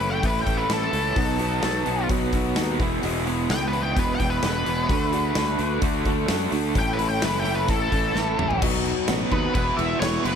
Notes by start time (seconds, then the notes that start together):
Already playing: F#1 E3 A3 C#4 E4
0.00 A2 E3 A3 C#4 E4, open hi-hat
0.10 G5
0.23 A1 A2 E3 A3 C#4 E4 B4, kick, open hi-hat
0.41 G5
0.46 A1 A2 E3 A3 C#4 E4, kick, open hi-hat
0.57 B4
0.68 A1 A2 E3 A3 C#4 E4, snare, open hi-hat
0.73 A4
0.92 C#2 A2 E3 A3 C#4 E4, open hi-hat
1.15 B1 B2 F#3 B3 D#4 F#4 B4, kick, open hi-hat
1.39 B2 F#3 B3 D#4 F#4 B4, open hi-hat
1.61 B1 B2 F#3 B3 D#4 F#4, snare, open hi-hat
1.85 B1 B2 F#3 B3 D#4 F#4, open hi-hat
2.08 B1 B2 F#3 B3 D#4 F#4, kick, open hi-hat
2.32 B2 F#3 B3 D#4 F#4 B4, kick, open hi-hat
2.55 D#2 B2 F#3 B3 D#4 F#4, snare, open hi-hat
2.78 E1 E2 B2 E3 G#3 B3 E4 G#4 B4, kick, open hi-hat
3.02 E1 E2 B2 E3 G#3 B3 G#4, open hi-hat
3.25 E2 B2 E3 G#3 B3 E4 G#4 B4, open hi-hat
3.49 C#2 E2 B2 E3 G#3 B3 G#4 G5, snare, open hi-hat
3.68 B4
3.72 E2 B2 E3 G#3 B3 G#4, open hi-hat
3.83 G5
3.95 E1 E2 B2 E3 G#3 B3 G#4 B4, kick, open hi-hat
4.15 G5
4.19 E1 E2 B2 E3 G#3 B3 E4 G#4 B4, kick, open hi-hat
4.30 B4
4.42 E1 E2 B2 E3 G#3 B3 G#4 B4, snare, open hi-hat
4.65 E1 E2 B2 E3 G#3 B3 G#4, open hi-hat
4.89 D2 D3 A3 D4 F#4 A4, kick, open hi-hat
5.12 D3 A3 D4 F#4 G#4, open hi-hat
5.35 D2 D3 A3 D4 F#4, snare, open hi-hat
5.59 D2 D3 A3 D4 F#4, open hi-hat
5.82 D2 D3 A3 D4 F#4, kick, open hi-hat
6.04 D3 A3 D4 F#4 A4, kick, open hi-hat
6.28 F#2 D3 A3 D4 F#4, snare, open hi-hat
6.51 D2 D3 A3 D4 F#4, open hi-hat
6.74 A1 A2 E3 A3 C#4 E4 A4, kick, open hi-hat
6.79 G5
6.93 B4
6.98 A2 E3 A3 C#4 E4 A4, open hi-hat
7.08 G5
7.21 F#1 A2 E3 A3 C#4 E4 B4, snare, open hi-hat
7.39 G5
7.44 A2 E3 A3 C#4 E4, open hi-hat
7.55 B4
7.68 A1 A2 E3 A3 C#4 E4 A4, kick, open hi-hat
7.91 A1 A2 E3 A3 C#4 E4 A4, kick, open hi-hat
8.15 A1 A2 E3 A3 C#4 E4, snare
8.38 A1 A2 E3 A3 C#4 E4, mid tom
8.51 floor tom
8.61 B1 B2 F#3 B3 D#4 F#4, kick, crash
8.74 snare
8.85 crash
9.08 A1 F#3 B3 D#4 F#4, snare, crash
9.30 D#2 B2 D#3 F#3 B3 D#4 F#4 B4, kick, crash
9.54 E1 E2 B2 E3 B3 E4 G#4 B4, kick, crash
9.77 E1 E3 B3 E4 G#4 E5, crash
10.00 E1 E3 E4 C#5, snare, crash
10.23 F#1 E2 B2 E3 G#3 B3 E4 G#4 B4, crash